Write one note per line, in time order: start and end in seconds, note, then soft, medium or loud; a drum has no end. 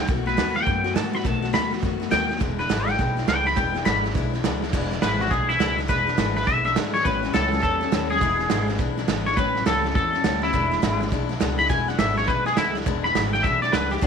0.00 0.08 E3 soft
0.07 0.34 B1 loud
0.07 0.26 B2 medium
0.07 0.27 D#3 medium
0.07 0.27 A3 medium
0.07 0.26 B3 medium
0.07 0.25 F#4 medium
0.07 kick loud
0.07 snare soft
0.26 0.37 A3 soft
0.26 0.38 B3 medium
0.26 0.37 F#4 medium
0.26 0.55 B4 loud
0.26 snare soft
0.37 0.63 D#2 medium
0.37 0.56 B2 medium
0.37 0.56 D#3 medium
0.37 0.56 A3 medium
0.37 0.55 B3 medium
0.37 0.54 F#4 medium
0.37 snare loud
0.37 hi-hat pedal medium
0.55 0.66 A3 soft
0.55 0.67 B3 medium
0.55 0.66 F#4 medium
0.55 0.96 G5 loud
0.55 snare soft
0.62 snare soft
0.66 0.92 F#2 loud
0.66 0.85 D#3 medium
0.66 0.85 A3 medium
0.66 0.85 B3 medium
0.66 0.83 F#4 medium
0.66 kick loud
0.66 snare soft
0.84 0.95 A3 soft
0.84 0.96 B3 soft
0.84 0.95 F#4 medium
0.84 snare soft
0.95 1.21 G#2 medium
0.95 1.14 B2 medium
0.95 1.14 D#3 medium
0.95 1.15 A3 medium
0.95 1.14 B3 loud
0.95 1.12 F#4 loud
0.95 1.15 A5 loud
0.95 snare loud
0.95 hi-hat pedal medium
1.13 1.25 A3 soft
1.13 1.25 B3 medium
1.13 1.24 F#4 medium
1.13 1.25 B5 loud
1.13 snare soft
1.20 snare soft
1.24 1.50 B1 loud
1.24 1.43 B2 medium
1.24 1.44 D#3 medium
1.24 1.44 A3 medium
1.24 1.42 B3 medium
1.24 1.41 F#4 medium
1.24 1.53 A5 loud
1.24 kick loud
1.24 snare soft
1.42 1.53 A3 soft
1.42 1.53 B3 soft
1.42 1.53 F#4 medium
1.42 snare soft
1.53 1.79 D#2 medium
1.53 1.72 B2 medium
1.53 1.72 D#3 medium
1.53 1.72 A3 medium
1.53 1.71 B3 medium
1.53 1.70 F#4 medium
1.53 1.72 B5 loud
1.53 snare loud
1.53 hi-hat pedal loud
1.71 1.82 A3 soft
1.71 1.83 B3 medium
1.71 1.82 F#4 medium
1.71 snare soft
1.78 2.01 D#3 medium
1.78 snare soft
1.83 2.09 F#2 loud
1.83 2.01 A3 medium
1.83 2.00 B3 medium
1.83 1.98 F#4 medium
1.83 kick loud
1.83 snare soft
2.00 2.10 A3 soft
2.00 2.11 B3 medium
2.00 2.11 F#4 medium
2.00 snare soft
2.11 2.37 D#2 medium
2.11 2.30 B2 medium
2.11 2.30 D#3 medium
2.11 2.30 A3 medium
2.11 2.29 B3 loud
2.11 2.28 F#4 medium
2.11 2.40 G5 loud
2.11 snare loud
2.11 hi-hat pedal medium
2.29 2.41 A3 soft
2.29 2.41 B3 medium
2.29 2.40 F#4 medium
2.29 snare soft
2.36 snare soft
2.40 2.67 E1 medium
2.40 2.59 E2 medium
2.40 2.59 B2 medium
2.40 2.59 E3 medium
2.40 2.60 G#3 medium
2.40 2.59 D4 medium
2.40 2.58 E4 medium
2.40 kick loud
2.40 snare soft
2.59 2.69 E3 soft
2.59 2.70 G#3 soft
2.59 2.70 D4 medium
2.59 2.70 E4 medium
2.59 2.89 B4 medium
2.59 snare soft
2.69 2.95 G#1 medium
2.69 2.88 E2 medium
2.69 2.88 B2 medium
2.69 2.88 E3 medium
2.69 2.89 G#3 medium
2.69 2.88 D4 medium
2.69 2.86 E4 medium
2.69 snare loud
2.69 hi-hat pedal medium
2.88 2.97 E3 soft
2.88 2.98 G#3 medium
2.88 2.99 D4 medium
2.88 2.99 E4 medium
2.88 3.27 G5 loud
2.88 snare soft
2.94 snare soft
2.98 3.25 B1 loud
2.98 3.17 E3 medium
2.98 3.18 G#3 medium
2.98 3.17 D4 medium
2.98 3.16 E4 medium
2.98 kick loud
2.98 snare soft
3.17 3.27 E3 soft
3.17 3.27 G#3 soft
3.17 3.28 D4 soft
3.17 3.28 E4 medium
3.17 snare soft
3.28 3.53 C#2 medium
3.28 3.46 E2 medium
3.28 3.46 B2 medium
3.28 3.47 E3 medium
3.28 3.47 G#3 medium
3.28 3.46 D4 medium
3.28 3.45 E4 medium
3.28 3.46 G5 loud
3.28 snare loud
3.28 hi-hat pedal medium
3.46 3.56 E3 soft
3.46 3.56 G#3 medium
3.46 3.57 D4 medium
3.46 3.57 E4 medium
3.46 3.57 B5 loud
3.46 snare soft
3.52 snare soft
3.56 3.83 E1 medium
3.56 3.75 E2 medium
3.56 3.75 B2 medium
3.56 3.75 E3 medium
3.56 3.75 G#3 medium
3.56 3.74 D4 medium
3.56 3.73 E4 medium
3.56 3.85 G5 medium
3.56 kick loud
3.56 snare soft
3.74 3.85 E3 soft
3.74 3.85 G#3 soft
3.74 3.85 D4 medium
3.74 3.85 E4 medium
3.74 snare soft
3.85 4.12 G#1 loud
3.85 4.04 E2 medium
3.85 4.04 B2 medium
3.85 4.05 E3 medium
3.85 4.05 G#3 medium
3.85 4.04 D4 medium
3.85 4.03 E4 medium
3.85 4.04 B5 loud
3.85 snare loud
3.85 hi-hat pedal medium
4.04 4.13 E3 medium
4.04 4.14 G#3 medium
4.04 4.15 D4 soft
4.04 4.15 E4 medium
4.04 snare soft
4.10 snare soft
4.14 4.41 B1 loud
4.14 4.33 E3 medium
4.14 4.34 G#3 medium
4.14 4.33 D4 medium
4.14 4.32 E4 medium
4.14 kick loud
4.14 snare soft
4.33 4.44 E3 soft
4.33 4.44 G#3 medium
4.33 4.44 D4 medium
4.33 4.44 E4 medium
4.33 snare soft
4.44 4.70 C#2 medium
4.44 4.62 E2 medium
4.44 4.63 B2 medium
4.44 4.63 E3 medium
4.44 4.63 G#3 loud
4.44 4.63 D4 loud
4.44 4.61 E4 loud
4.44 snare loud
4.44 hi-hat pedal medium
4.62 4.73 E3 medium
4.62 4.73 G#3 medium
4.62 4.74 D4 medium
4.62 4.73 E4 medium
4.62 snare soft
4.68 snare soft
4.73 4.99 E1 medium
4.73 4.91 E2 medium
4.73 4.92 B2 medium
4.73 4.92 E3 medium
4.73 4.92 G#3 medium
4.73 4.91 D4 loud
4.73 4.90 E4 loud
4.73 kick loud
4.73 snare soft
4.73 crash loud
4.91 5.02 E3 medium
4.91 5.02 G#3 medium
4.91 5.03 D4 medium
4.91 5.02 E4 medium
4.91 snare soft
5.02 5.28 G#1 medium
5.02 5.20 E2 medium
5.02 5.21 B2 medium
5.02 5.21 E3 medium
5.02 5.21 G#3 medium
5.02 5.20 D4 medium
5.02 5.19 E4 loud
5.02 5.20 B4 loud
5.02 snare loud
5.02 hi-hat pedal medium
5.20 5.29 E3 soft
5.20 5.30 G#3 soft
5.20 5.32 D4 medium
5.20 5.31 E4 medium
5.20 5.31 F#4 medium
5.20 snare soft
5.26 snare soft
5.30 5.57 B1 medium
5.30 5.49 E3 medium
5.30 5.50 G#3 medium
5.30 5.49 D4 medium
5.30 5.48 E4 medium
5.30 5.49 G#4 medium
5.30 kick loud
5.30 snare soft
5.49 5.59 E3 soft
5.49 5.60 G#3 medium
5.49 5.60 D4 medium
5.49 5.77 E4 loud
5.49 5.60 E4 medium
5.49 snare soft
5.60 5.86 C#2 medium
5.60 5.78 E2 medium
5.60 5.79 B2 medium
5.60 5.79 E3 medium
5.60 5.79 G#3 medium
5.60 5.78 D4 medium
5.60 5.77 E4 medium
5.60 snare loud
5.60 hi-hat pedal loud
5.78 5.88 E3 soft
5.78 5.89 G#3 medium
5.78 5.89 D4 medium
5.78 5.89 E4 medium
5.78 snare soft
5.84 snare soft
5.88 6.15 E1 loud
5.88 6.07 E2 medium
5.88 6.08 B2 medium
5.88 6.08 E3 medium
5.88 6.08 G#3 medium
5.88 6.07 D4 loud
5.88 6.06 E4 medium
5.88 6.35 B4 loud
5.88 kick loud
5.88 snare soft
6.07 6.17 E3 soft
6.07 6.17 G#3 medium
6.07 6.18 D4 medium
6.07 6.18 E4 medium
6.07 snare soft
6.17 6.44 G#1 loud
6.17 6.36 E2 medium
6.17 6.37 B2 medium
6.17 6.37 E3 medium
6.17 6.37 G#3 medium
6.17 6.36 D4 medium
6.17 6.35 E4 medium
6.17 snare loud
6.17 hi-hat pedal medium
6.36 6.45 E3 soft
6.36 6.46 G#3 medium
6.36 6.47 D4 medium
6.36 6.47 E4 medium
6.36 6.47 B4 loud
6.36 snare soft
6.42 snare soft
6.46 6.73 B1 medium
6.46 6.65 E3 medium
6.46 6.66 G#3 medium
6.46 6.65 D4 medium
6.46 6.64 E4 medium
6.46 6.64 E5 medium
6.46 kick loud
6.46 snare soft
6.65 6.76 E3 soft
6.65 6.76 G#3 soft
6.65 6.76 D4 soft
6.65 6.76 E4 medium
6.65 6.76 E5 loud
6.65 snare soft
6.76 7.02 G#1 medium
6.76 6.95 E2 medium
6.76 6.95 B2 medium
6.76 6.95 E3 medium
6.76 6.95 G#3 medium
6.76 6.94 D4 medium
6.76 6.93 E4 medium
6.76 snare loud
6.76 hi-hat pedal medium
6.94 7.04 E3 soft
6.94 7.06 G#3 medium
6.94 7.06 D4 medium
6.94 7.05 E4 medium
6.94 7.04 C#5 loud
6.94 snare soft
7.00 snare soft
7.05 7.31 A1 loud
7.05 7.24 A2 medium
7.05 7.24 E3 medium
7.05 7.24 G3 medium
7.05 7.23 C#4 medium
7.05 7.22 E4 medium
7.05 7.33 B4 medium
7.05 kick loud
7.05 snare soft
7.23 7.34 G3 soft
7.23 7.34 C#4 medium
7.23 7.34 E4 medium
7.23 snare soft
7.33 7.60 C#2 loud
7.33 7.52 A2 medium
7.33 7.53 E3 medium
7.33 7.53 G3 medium
7.33 7.52 C#4 medium
7.33 7.51 E4 medium
7.33 7.61 A4 medium
7.33 snare loud
7.33 hi-hat pedal medium
7.52 7.62 G3 soft
7.52 7.63 C#4 medium
7.52 7.63 E4 medium
7.52 snare soft
7.58 7.81 E3 medium
7.58 snare soft
7.63 7.82 G3 medium
7.63 7.81 C#4 medium
7.63 7.80 E4 medium
7.63 8.09 A4 loud
7.63 kick loud
7.63 snare soft
7.81 7.92 G3 soft
7.81 7.92 C#4 medium
7.81 7.92 E4 medium
7.81 snare soft
7.92 8.18 D#2 medium
7.92 8.11 A2 medium
7.92 8.11 E3 medium
7.92 8.11 G3 medium
7.92 8.11 C#4 medium
7.92 8.09 E4 loud
7.92 snare loud
7.92 hi-hat pedal medium
8.10 8.22 G3 medium
8.10 8.22 C#4 medium
8.10 8.21 E4 medium
8.10 8.67 G#4 loud
8.10 snare soft
8.16 snare soft
8.21 8.47 E1 medium
8.21 8.40 E2 medium
8.21 8.40 B2 medium
8.21 8.40 E3 medium
8.21 8.40 G#3 medium
8.21 8.39 D4 medium
8.21 8.38 E4 medium
8.21 kick loud
8.21 snare soft
8.39 8.50 E3 soft
8.39 8.50 G#3 soft
8.39 8.50 D4 medium
8.39 8.50 E4 medium
8.39 snare soft
8.50 8.76 G#1 medium
8.50 8.69 E2 medium
8.50 8.69 B2 medium
8.50 8.69 E3 loud
8.50 8.69 G#3 loud
8.50 8.68 D4 medium
8.50 8.67 E4 medium
8.50 snare loud
8.50 hi-hat pedal medium
8.68 8.77 E3 medium
8.68 8.79 G#3 medium
8.68 8.79 D4 medium
8.68 8.79 E4 medium
8.68 snare soft
8.74 snare soft
8.79 9.05 B1 medium
8.79 8.98 E3 medium
8.79 8.98 G#3 medium
8.79 8.97 D4 medium
8.79 8.96 E4 medium
8.79 kick loud
8.79 snare soft
8.97 9.08 E3 soft
8.97 9.08 G#3 medium
8.97 9.08 D4 medium
8.97 9.08 E4 medium
8.97 snare soft
9.08 9.34 G#1 medium
9.08 9.27 E2 medium
9.08 9.27 B2 medium
9.08 9.27 E3 medium
9.08 9.28 G#3 medium
9.08 9.26 D4 loud
9.08 9.25 E4 medium
9.08 snare loud
9.08 hi-hat pedal medium
9.26 9.37 E3 soft
9.26 9.38 G#3 medium
9.26 9.38 D4 medium
9.26 9.37 E4 medium
9.26 9.37 C#5 loud
9.26 snare soft
9.32 snare soft
9.37 9.63 A1 medium
9.37 9.56 A2 medium
9.37 9.56 E3 medium
9.37 9.57 G3 medium
9.37 9.56 C#4 medium
9.37 9.54 E4 medium
9.37 9.65 B4 loud
9.37 kick loud
9.37 snare soft
9.55 9.66 G3 medium
9.55 9.66 C#4 medium
9.55 9.66 E4 medium
9.55 snare soft
9.66 9.92 C#2 medium
9.66 9.85 A2 medium
9.66 9.85 E3 loud
9.66 9.85 G3 medium
9.66 9.85 C#4 medium
9.66 9.83 E4 loud
9.66 9.94 A4 medium
9.66 snare loud
9.66 hi-hat pedal loud
9.84 9.95 G3 medium
9.84 9.96 C#4 medium
9.84 9.95 E4 medium
9.84 snare soft
9.90 snare soft
9.95 10.21 E2 loud
9.95 10.14 E3 medium
9.95 10.15 G3 medium
9.95 10.14 C#4 medium
9.95 10.12 E4 medium
9.95 10.42 A4 medium
9.95 kick loud
9.95 snare soft
10.13 10.24 G3 soft
10.13 10.24 C#4 medium
10.13 10.24 E4 medium
10.13 snare soft
10.24 10.51 D2 medium
10.24 10.43 A2 medium
10.24 10.43 E3 medium
10.24 10.43 G3 medium
10.24 10.42 C#4 medium
10.24 10.41 E4 medium
10.24 snare loud
10.24 hi-hat pedal medium
10.42 10.54 G3 soft
10.42 10.54 C#4 medium
10.42 10.53 E4 medium
10.42 11.00 E4 loud
10.42 snare soft
10.49 snare soft
10.53 10.79 E1 medium
10.53 10.72 E2 medium
10.53 10.72 B2 medium
10.53 10.72 E3 medium
10.53 10.73 G#3 medium
10.53 10.71 D4 medium
10.53 10.70 E4 medium
10.53 kick loud
10.53 snare soft
10.71 10.82 E3 medium
10.71 10.82 G#3 soft
10.71 10.83 D4 medium
10.71 10.83 E4 medium
10.71 snare soft
10.82 11.09 G#1 loud
10.82 11.01 E2 medium
10.82 11.01 B2 loud
10.82 11.02 E3 loud
10.82 11.02 G#3 medium
10.82 11.01 D4 loud
10.82 10.99 E4 medium
10.82 snare loud
10.82 hi-hat pedal medium
11.01 11.09 E3 medium
11.01 11.11 G#3 medium
11.01 11.12 D4 medium
11.01 11.12 E4 medium
11.01 snare soft
11.07 11.30 E3 medium
11.07 snare soft
11.12 11.38 B1 loud
11.12 11.30 G#3 medium
11.12 11.29 D4 medium
11.12 11.28 E4 medium
11.12 kick loud
11.12 snare soft
11.29 11.40 E3 medium
11.29 11.40 G#3 medium
11.29 11.41 D4 medium
11.29 11.40 E4 medium
11.29 snare soft
11.40 11.67 C#2 medium
11.40 11.59 E2 medium
11.40 11.59 B2 loud
11.40 11.60 E3 loud
11.40 11.60 G#3 loud
11.40 11.58 D4 loud
11.40 11.57 E4 loud
11.40 snare loud
11.40 hi-hat pedal medium
11.59 11.69 E3 medium
11.59 11.70 G#3 medium
11.59 11.70 D4 medium
11.59 11.70 E4 medium
11.59 11.69 B5 loud
11.59 snare soft
11.65 snare soft
11.69 11.96 E1 medium
11.69 11.88 E2 medium
11.69 11.88 B2 medium
11.69 11.89 E3 medium
11.69 11.89 G#3 medium
11.69 11.88 D4 medium
11.69 11.87 E4 medium
11.69 11.88 G#5 loud
11.69 kick loud
11.69 snare soft
11.88 11.98 E3 medium
11.88 11.99 G#3 soft
11.88 11.99 D4 medium
11.88 11.99 E4 medium
11.88 11.99 F#5 medium
11.88 snare soft
11.99 12.24 G#1 medium
11.99 12.17 E2 medium
11.99 12.17 B2 medium
11.99 12.18 E3 medium
11.99 12.18 G#3 medium
11.99 12.17 D4 medium
11.99 12.16 E4 medium
11.99 12.17 E5 loud
11.99 snare loud
11.99 hi-hat pedal medium
12.17 12.26 E3 soft
12.17 12.27 G#3 soft
12.17 12.29 D4 medium
12.17 12.28 E4 medium
12.17 12.28 C#5 loud
12.17 snare soft
12.23 snare soft
12.27 12.54 B1 medium
12.27 12.46 E3 medium
12.27 12.47 G#3 medium
12.27 12.46 D4 medium
12.27 12.45 E4 medium
12.27 12.46 B4 loud
12.27 kick loud
12.27 snare soft
12.46 12.56 E3 medium
12.46 12.57 G#3 soft
12.46 12.57 D4 medium
12.46 12.57 E4 medium
12.46 12.57 G#4 loud
12.46 snare soft
12.57 12.83 C#2 medium
12.57 12.75 E2 medium
12.57 12.76 B2 medium
12.57 12.76 E3 medium
12.57 12.76 G#3 medium
12.57 12.75 D4 medium
12.57 12.75 E4 loud
12.57 12.74 E4 medium
12.57 snare loud
12.57 hi-hat pedal loud
12.75 12.85 E3 medium
12.75 12.86 G#3 medium
12.75 12.87 D4 medium
12.75 12.86 E4 medium
12.75 snare soft
12.81 snare soft
12.86 13.12 E1 loud
12.86 13.05 E2 medium
12.86 13.05 B2 medium
12.86 13.05 E3 medium
12.86 13.05 G#3 loud
12.86 13.04 D4 medium
12.86 13.03 E4 medium
12.86 kick loud
12.86 snare soft
13.04 13.15 E3 soft
13.04 13.15 G#3 medium
13.04 13.16 D4 medium
13.04 13.15 E4 medium
13.04 13.33 B5 loud
13.04 snare soft
13.15 13.41 G#1 medium
13.15 13.34 E2 medium
13.15 13.34 B2 medium
13.15 13.34 E3 medium
13.15 13.34 G#3 medium
13.15 13.33 D4 medium
13.15 13.32 E4 medium
13.15 snare loud
13.15 hi-hat pedal medium
13.33 13.43 E3 soft
13.33 13.44 G#3 medium
13.33 13.45 D4 medium
13.33 13.44 E4 medium
13.33 13.44 G5 loud
13.33 snare soft
13.39 snare soft
13.43 13.70 B1 loud
13.43 13.62 E3 medium
13.43 13.63 G#3 medium
13.43 13.63 D4 medium
13.43 13.61 E4 medium
13.43 13.62 E5 loud
13.43 kick loud
13.43 snare soft
13.62 13.73 E3 medium
13.62 13.74 G#3 soft
13.62 13.74 D4 medium
13.62 13.73 E4 medium
13.62 13.73 D5 loud
13.62 snare soft
13.72 13.99 C#2 medium
13.72 13.92 E2 medium
13.72 13.92 B2 medium
13.72 13.92 E3 medium
13.72 13.92 G#3 medium
13.72 13.91 D4 medium
13.72 13.89 E4 medium
13.72 13.91 B4 loud
13.72 snare loud
13.72 hi-hat pedal medium
13.91 14.02 E3 medium
13.91 14.02 G#3 medium
13.91 14.02 D4 medium
13.91 14.02 E4 medium
13.91 14.02 G4 medium
13.91 snare soft
13.97 snare soft
14.01 14.07 B1 loud
14.01 14.07 B2 medium
14.01 14.07 D#3 medium
14.01 14.07 A3 medium
14.01 14.07 B3 medium
14.01 14.07 D4 medium
14.01 14.07 F#4 medium
14.01 kick loud
14.01 snare soft